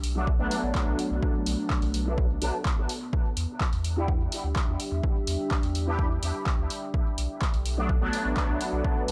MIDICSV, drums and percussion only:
0, 0, Header, 1, 2, 480
1, 0, Start_track
1, 0, Key_signature, 2, "minor"
1, 0, Tempo, 476190
1, 1236, Time_signature, 4, 2, 24, 8
1, 9189, End_track
2, 0, Start_track
2, 0, Title_t, "Drums"
2, 36, Note_on_c, 9, 46, 72
2, 137, Note_off_c, 9, 46, 0
2, 275, Note_on_c, 9, 36, 121
2, 376, Note_off_c, 9, 36, 0
2, 516, Note_on_c, 9, 46, 82
2, 617, Note_off_c, 9, 46, 0
2, 755, Note_on_c, 9, 36, 121
2, 756, Note_on_c, 9, 39, 81
2, 856, Note_off_c, 9, 36, 0
2, 857, Note_off_c, 9, 39, 0
2, 996, Note_on_c, 9, 46, 70
2, 1097, Note_off_c, 9, 46, 0
2, 1235, Note_on_c, 9, 36, 127
2, 1336, Note_off_c, 9, 36, 0
2, 1476, Note_on_c, 9, 46, 89
2, 1577, Note_off_c, 9, 46, 0
2, 1715, Note_on_c, 9, 36, 123
2, 1715, Note_on_c, 9, 39, 82
2, 1816, Note_off_c, 9, 36, 0
2, 1816, Note_off_c, 9, 39, 0
2, 1837, Note_on_c, 9, 46, 36
2, 1937, Note_off_c, 9, 46, 0
2, 1956, Note_on_c, 9, 46, 76
2, 2056, Note_off_c, 9, 46, 0
2, 2195, Note_on_c, 9, 36, 123
2, 2296, Note_off_c, 9, 36, 0
2, 2436, Note_on_c, 9, 46, 84
2, 2537, Note_off_c, 9, 46, 0
2, 2675, Note_on_c, 9, 36, 122
2, 2676, Note_on_c, 9, 39, 82
2, 2776, Note_off_c, 9, 36, 0
2, 2776, Note_off_c, 9, 39, 0
2, 2916, Note_on_c, 9, 46, 75
2, 3017, Note_off_c, 9, 46, 0
2, 3155, Note_on_c, 9, 36, 123
2, 3256, Note_off_c, 9, 36, 0
2, 3395, Note_on_c, 9, 46, 89
2, 3496, Note_off_c, 9, 46, 0
2, 3635, Note_on_c, 9, 36, 127
2, 3635, Note_on_c, 9, 39, 81
2, 3736, Note_off_c, 9, 36, 0
2, 3736, Note_off_c, 9, 39, 0
2, 3757, Note_on_c, 9, 46, 36
2, 3858, Note_off_c, 9, 46, 0
2, 3875, Note_on_c, 9, 46, 74
2, 3976, Note_off_c, 9, 46, 0
2, 4115, Note_on_c, 9, 36, 127
2, 4216, Note_off_c, 9, 36, 0
2, 4356, Note_on_c, 9, 46, 88
2, 4456, Note_off_c, 9, 46, 0
2, 4595, Note_on_c, 9, 36, 125
2, 4595, Note_on_c, 9, 39, 81
2, 4696, Note_off_c, 9, 36, 0
2, 4696, Note_off_c, 9, 39, 0
2, 4835, Note_on_c, 9, 46, 75
2, 4936, Note_off_c, 9, 46, 0
2, 5075, Note_on_c, 9, 36, 122
2, 5176, Note_off_c, 9, 36, 0
2, 5315, Note_on_c, 9, 46, 88
2, 5416, Note_off_c, 9, 46, 0
2, 5555, Note_on_c, 9, 36, 127
2, 5556, Note_on_c, 9, 39, 75
2, 5656, Note_off_c, 9, 36, 0
2, 5656, Note_off_c, 9, 39, 0
2, 5677, Note_on_c, 9, 46, 35
2, 5778, Note_off_c, 9, 46, 0
2, 5796, Note_on_c, 9, 46, 75
2, 5897, Note_off_c, 9, 46, 0
2, 6035, Note_on_c, 9, 36, 122
2, 6136, Note_off_c, 9, 36, 0
2, 6276, Note_on_c, 9, 46, 87
2, 6377, Note_off_c, 9, 46, 0
2, 6515, Note_on_c, 9, 36, 123
2, 6517, Note_on_c, 9, 39, 75
2, 6616, Note_off_c, 9, 36, 0
2, 6617, Note_off_c, 9, 39, 0
2, 6757, Note_on_c, 9, 46, 72
2, 6857, Note_off_c, 9, 46, 0
2, 6996, Note_on_c, 9, 36, 121
2, 7096, Note_off_c, 9, 36, 0
2, 7237, Note_on_c, 9, 46, 86
2, 7337, Note_off_c, 9, 46, 0
2, 7475, Note_on_c, 9, 36, 120
2, 7477, Note_on_c, 9, 39, 75
2, 7576, Note_off_c, 9, 36, 0
2, 7577, Note_off_c, 9, 39, 0
2, 7598, Note_on_c, 9, 46, 34
2, 7699, Note_off_c, 9, 46, 0
2, 7717, Note_on_c, 9, 46, 72
2, 7817, Note_off_c, 9, 46, 0
2, 7956, Note_on_c, 9, 36, 120
2, 8056, Note_off_c, 9, 36, 0
2, 8196, Note_on_c, 9, 46, 82
2, 8297, Note_off_c, 9, 46, 0
2, 8436, Note_on_c, 9, 36, 114
2, 8436, Note_on_c, 9, 39, 75
2, 8536, Note_off_c, 9, 36, 0
2, 8537, Note_off_c, 9, 39, 0
2, 8676, Note_on_c, 9, 46, 73
2, 8776, Note_off_c, 9, 46, 0
2, 8916, Note_on_c, 9, 36, 118
2, 9016, Note_off_c, 9, 36, 0
2, 9156, Note_on_c, 9, 46, 84
2, 9189, Note_off_c, 9, 46, 0
2, 9189, End_track
0, 0, End_of_file